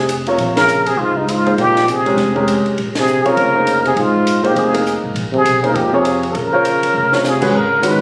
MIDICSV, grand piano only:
0, 0, Header, 1, 2, 480
1, 0, Start_track
1, 0, Tempo, 298063
1, 620, Time_signature, 4, 2, 24, 8
1, 12903, End_track
2, 0, Start_track
2, 0, Title_t, "Grand piano"
2, 0, Program_c, 0, 0
2, 435, Note_on_c, 0, 48, 58
2, 446, Note_on_c, 0, 65, 54
2, 457, Note_on_c, 0, 70, 55
2, 461, Note_on_c, 0, 73, 64
2, 1065, Note_off_c, 0, 48, 0
2, 1071, Note_off_c, 0, 65, 0
2, 1076, Note_off_c, 0, 70, 0
2, 1078, Note_off_c, 0, 73, 0
2, 2349, Note_on_c, 0, 58, 53
2, 2353, Note_on_c, 0, 63, 57
2, 2365, Note_on_c, 0, 68, 58
2, 2369, Note_on_c, 0, 72, 66
2, 2983, Note_off_c, 0, 58, 0
2, 2985, Note_off_c, 0, 63, 0
2, 2991, Note_off_c, 0, 68, 0
2, 2993, Note_off_c, 0, 72, 0
2, 3310, Note_on_c, 0, 56, 56
2, 3312, Note_on_c, 0, 61, 55
2, 3316, Note_on_c, 0, 67, 48
2, 3335, Note_on_c, 0, 70, 53
2, 3482, Note_off_c, 0, 56, 0
2, 3483, Note_off_c, 0, 61, 0
2, 3485, Note_off_c, 0, 67, 0
2, 3494, Note_off_c, 0, 70, 0
2, 3781, Note_on_c, 0, 56, 56
2, 3792, Note_on_c, 0, 61, 49
2, 3793, Note_on_c, 0, 67, 49
2, 3805, Note_on_c, 0, 70, 65
2, 4419, Note_off_c, 0, 56, 0
2, 4425, Note_off_c, 0, 61, 0
2, 4425, Note_off_c, 0, 67, 0
2, 4431, Note_off_c, 0, 70, 0
2, 5234, Note_on_c, 0, 60, 60
2, 5237, Note_on_c, 0, 65, 52
2, 5244, Note_on_c, 0, 73, 69
2, 5245, Note_on_c, 0, 70, 53
2, 5685, Note_off_c, 0, 60, 0
2, 5687, Note_off_c, 0, 65, 0
2, 5690, Note_off_c, 0, 73, 0
2, 5691, Note_off_c, 0, 70, 0
2, 5723, Note_on_c, 0, 58, 50
2, 5728, Note_on_c, 0, 63, 42
2, 5733, Note_on_c, 0, 68, 42
2, 5748, Note_on_c, 0, 72, 51
2, 6350, Note_off_c, 0, 58, 0
2, 6353, Note_off_c, 0, 63, 0
2, 6355, Note_off_c, 0, 68, 0
2, 6363, Note_off_c, 0, 72, 0
2, 7134, Note_on_c, 0, 58, 59
2, 7136, Note_on_c, 0, 63, 50
2, 7150, Note_on_c, 0, 68, 48
2, 7157, Note_on_c, 0, 72, 60
2, 7589, Note_off_c, 0, 58, 0
2, 7590, Note_off_c, 0, 63, 0
2, 7603, Note_off_c, 0, 68, 0
2, 7607, Note_off_c, 0, 72, 0
2, 7613, Note_on_c, 0, 58, 49
2, 7614, Note_on_c, 0, 63, 56
2, 7630, Note_on_c, 0, 68, 50
2, 7636, Note_on_c, 0, 70, 62
2, 8255, Note_off_c, 0, 58, 0
2, 8256, Note_off_c, 0, 63, 0
2, 8264, Note_off_c, 0, 68, 0
2, 8266, Note_off_c, 0, 70, 0
2, 9068, Note_on_c, 0, 58, 54
2, 9068, Note_on_c, 0, 63, 51
2, 9075, Note_on_c, 0, 68, 57
2, 9078, Note_on_c, 0, 72, 60
2, 9522, Note_off_c, 0, 58, 0
2, 9522, Note_off_c, 0, 63, 0
2, 9526, Note_off_c, 0, 68, 0
2, 9527, Note_off_c, 0, 72, 0
2, 9548, Note_on_c, 0, 48, 55
2, 9555, Note_on_c, 0, 65, 50
2, 9567, Note_on_c, 0, 70, 52
2, 9570, Note_on_c, 0, 73, 71
2, 10183, Note_off_c, 0, 48, 0
2, 10186, Note_off_c, 0, 65, 0
2, 10192, Note_off_c, 0, 70, 0
2, 10194, Note_off_c, 0, 73, 0
2, 10510, Note_on_c, 0, 72, 63
2, 10517, Note_on_c, 0, 65, 58
2, 10524, Note_on_c, 0, 70, 56
2, 10536, Note_on_c, 0, 73, 66
2, 11143, Note_off_c, 0, 72, 0
2, 11147, Note_off_c, 0, 65, 0
2, 11150, Note_off_c, 0, 70, 0
2, 11156, Note_off_c, 0, 73, 0
2, 11459, Note_on_c, 0, 60, 56
2, 11475, Note_on_c, 0, 65, 43
2, 11477, Note_on_c, 0, 70, 49
2, 11486, Note_on_c, 0, 73, 58
2, 11917, Note_off_c, 0, 60, 0
2, 11925, Note_off_c, 0, 65, 0
2, 11926, Note_off_c, 0, 70, 0
2, 11930, Note_off_c, 0, 73, 0
2, 11934, Note_on_c, 0, 56, 71
2, 11935, Note_on_c, 0, 61, 63
2, 11940, Note_on_c, 0, 66, 62
2, 11949, Note_on_c, 0, 71, 66
2, 12113, Note_off_c, 0, 56, 0
2, 12114, Note_off_c, 0, 61, 0
2, 12116, Note_off_c, 0, 66, 0
2, 12121, Note_off_c, 0, 71, 0
2, 12596, Note_on_c, 0, 56, 58
2, 12600, Note_on_c, 0, 61, 49
2, 12603, Note_on_c, 0, 66, 58
2, 12610, Note_on_c, 0, 71, 56
2, 12870, Note_off_c, 0, 56, 0
2, 12872, Note_off_c, 0, 61, 0
2, 12873, Note_off_c, 0, 66, 0
2, 12877, Note_off_c, 0, 71, 0
2, 12903, End_track
0, 0, End_of_file